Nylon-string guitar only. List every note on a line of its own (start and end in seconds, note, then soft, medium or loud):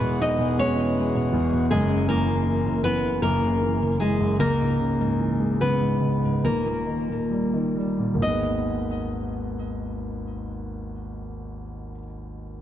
0.00 0.18 B3 medium
0.00 0.18 B4 medium
0.21 0.56 D#4 medium
0.21 0.56 D#5 medium
0.59 1.30 C#4 medium
0.59 1.30 C#5 medium
1.71 2.06 G#3 medium
1.71 2.09 G#4 medium
2.09 2.80 A#3 medium
2.09 2.80 A#4 medium
2.84 3.20 B3 medium
2.84 3.22 B4 loud
3.22 3.96 A#3 medium
3.22 4.02 A#4 medium
4.00 4.37 G#3 medium
4.00 4.36 G#4 medium
4.40 5.56 A#3 medium
4.40 5.61 A#4 medium
5.61 6.40 B3 medium
5.61 6.44 B4 medium
6.45 7.73 A#3 medium
6.45 7.72 A#4 medium
8.22 11.99 D#5 medium